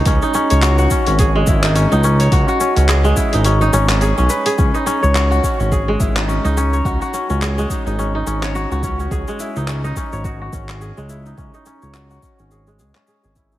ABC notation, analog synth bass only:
X:1
M:4/4
L:1/16
Q:"Swing 16ths" 1/4=106
K:G#phr
V:1 name="Analog synth bass" clef=bass
C,, z2 C,,3 z G,,,3 G,,,3 C,,3 | C,, z2 C,,3 z G,,,3 G,,,3 B,,, z2 | C,, z2 C,,3 z G,,,3 G,,,3 C,,3 | C,, z2 C,,3 z G,,,3 G,,,3 C,,3 |
C,, z2 C,,3 z G,,,3 G,,,3 C,,3 | C,, z2 C,,3 z G,,,3 C,, z2 G,,,3 |]